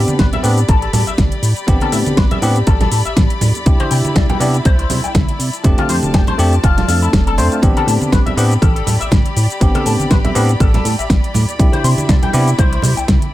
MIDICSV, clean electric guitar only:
0, 0, Header, 1, 2, 480
1, 0, Start_track
1, 0, Key_signature, 0, "minor"
1, 0, Tempo, 495868
1, 1625, Time_signature, 4, 2, 24, 8
1, 12910, End_track
2, 0, Start_track
2, 0, Title_t, "Clean electric guitar"
2, 0, Program_c, 0, 27
2, 184, Note_on_c, 0, 71, 75
2, 252, Note_off_c, 0, 71, 0
2, 321, Note_on_c, 0, 76, 74
2, 373, Note_off_c, 0, 76, 0
2, 426, Note_on_c, 0, 71, 72
2, 466, Note_off_c, 0, 71, 0
2, 667, Note_on_c, 0, 69, 93
2, 767, Note_off_c, 0, 69, 0
2, 797, Note_on_c, 0, 69, 90
2, 878, Note_off_c, 0, 69, 0
2, 903, Note_on_c, 0, 69, 70
2, 971, Note_off_c, 0, 69, 0
2, 1037, Note_on_c, 0, 76, 72
2, 1091, Note_off_c, 0, 76, 0
2, 1758, Note_on_c, 0, 69, 95
2, 1838, Note_off_c, 0, 69, 0
2, 1861, Note_on_c, 0, 76, 94
2, 1904, Note_off_c, 0, 76, 0
2, 2103, Note_on_c, 0, 71, 77
2, 2171, Note_off_c, 0, 71, 0
2, 2238, Note_on_c, 0, 76, 72
2, 2292, Note_off_c, 0, 76, 0
2, 2345, Note_on_c, 0, 71, 73
2, 2385, Note_off_c, 0, 71, 0
2, 2584, Note_on_c, 0, 69, 98
2, 2685, Note_off_c, 0, 69, 0
2, 2718, Note_on_c, 0, 69, 94
2, 2798, Note_off_c, 0, 69, 0
2, 2824, Note_on_c, 0, 69, 73
2, 2892, Note_off_c, 0, 69, 0
2, 2956, Note_on_c, 0, 76, 72
2, 3011, Note_off_c, 0, 76, 0
2, 3678, Note_on_c, 0, 72, 94
2, 3758, Note_off_c, 0, 72, 0
2, 3784, Note_on_c, 0, 79, 97
2, 3825, Note_off_c, 0, 79, 0
2, 4024, Note_on_c, 0, 74, 78
2, 4092, Note_off_c, 0, 74, 0
2, 4159, Note_on_c, 0, 79, 71
2, 4212, Note_off_c, 0, 79, 0
2, 4264, Note_on_c, 0, 74, 72
2, 4305, Note_off_c, 0, 74, 0
2, 4504, Note_on_c, 0, 72, 100
2, 4605, Note_off_c, 0, 72, 0
2, 4639, Note_on_c, 0, 72, 92
2, 4719, Note_off_c, 0, 72, 0
2, 4744, Note_on_c, 0, 72, 74
2, 4812, Note_off_c, 0, 72, 0
2, 4878, Note_on_c, 0, 79, 73
2, 4932, Note_off_c, 0, 79, 0
2, 5597, Note_on_c, 0, 65, 94
2, 5678, Note_off_c, 0, 65, 0
2, 5706, Note_on_c, 0, 72, 92
2, 5746, Note_off_c, 0, 72, 0
2, 5943, Note_on_c, 0, 67, 76
2, 6011, Note_off_c, 0, 67, 0
2, 6078, Note_on_c, 0, 72, 72
2, 6132, Note_off_c, 0, 72, 0
2, 6183, Note_on_c, 0, 67, 74
2, 6225, Note_off_c, 0, 67, 0
2, 6422, Note_on_c, 0, 65, 99
2, 6524, Note_off_c, 0, 65, 0
2, 6555, Note_on_c, 0, 65, 94
2, 6637, Note_off_c, 0, 65, 0
2, 6661, Note_on_c, 0, 65, 75
2, 6730, Note_off_c, 0, 65, 0
2, 6798, Note_on_c, 0, 64, 70
2, 6852, Note_off_c, 0, 64, 0
2, 7036, Note_on_c, 0, 69, 69
2, 7091, Note_off_c, 0, 69, 0
2, 7142, Note_on_c, 0, 72, 70
2, 7211, Note_off_c, 0, 72, 0
2, 7279, Note_on_c, 0, 65, 75
2, 7311, Note_off_c, 0, 65, 0
2, 7519, Note_on_c, 0, 69, 90
2, 7599, Note_off_c, 0, 69, 0
2, 7624, Note_on_c, 0, 81, 71
2, 7665, Note_off_c, 0, 81, 0
2, 7862, Note_on_c, 0, 71, 79
2, 7931, Note_off_c, 0, 71, 0
2, 7996, Note_on_c, 0, 76, 73
2, 8051, Note_off_c, 0, 76, 0
2, 8101, Note_on_c, 0, 71, 73
2, 8144, Note_off_c, 0, 71, 0
2, 8341, Note_on_c, 0, 69, 100
2, 8444, Note_off_c, 0, 69, 0
2, 8475, Note_on_c, 0, 69, 93
2, 8557, Note_off_c, 0, 69, 0
2, 8582, Note_on_c, 0, 69, 77
2, 8651, Note_off_c, 0, 69, 0
2, 8716, Note_on_c, 0, 76, 73
2, 8771, Note_off_c, 0, 76, 0
2, 9437, Note_on_c, 0, 69, 97
2, 9518, Note_off_c, 0, 69, 0
2, 9545, Note_on_c, 0, 81, 73
2, 9586, Note_off_c, 0, 81, 0
2, 9782, Note_on_c, 0, 71, 76
2, 9851, Note_off_c, 0, 71, 0
2, 9917, Note_on_c, 0, 76, 70
2, 9971, Note_off_c, 0, 76, 0
2, 10023, Note_on_c, 0, 71, 75
2, 10065, Note_off_c, 0, 71, 0
2, 10263, Note_on_c, 0, 69, 99
2, 10365, Note_off_c, 0, 69, 0
2, 10396, Note_on_c, 0, 69, 91
2, 10477, Note_off_c, 0, 69, 0
2, 10502, Note_on_c, 0, 69, 73
2, 10571, Note_off_c, 0, 69, 0
2, 10637, Note_on_c, 0, 76, 74
2, 10691, Note_off_c, 0, 76, 0
2, 11355, Note_on_c, 0, 72, 96
2, 11437, Note_off_c, 0, 72, 0
2, 11464, Note_on_c, 0, 84, 73
2, 11505, Note_off_c, 0, 84, 0
2, 11702, Note_on_c, 0, 74, 80
2, 11771, Note_off_c, 0, 74, 0
2, 11836, Note_on_c, 0, 79, 74
2, 11891, Note_off_c, 0, 79, 0
2, 11944, Note_on_c, 0, 74, 73
2, 11985, Note_off_c, 0, 74, 0
2, 12185, Note_on_c, 0, 72, 101
2, 12286, Note_off_c, 0, 72, 0
2, 12318, Note_on_c, 0, 72, 95
2, 12398, Note_off_c, 0, 72, 0
2, 12425, Note_on_c, 0, 72, 73
2, 12492, Note_off_c, 0, 72, 0
2, 12556, Note_on_c, 0, 79, 74
2, 12610, Note_off_c, 0, 79, 0
2, 12910, End_track
0, 0, End_of_file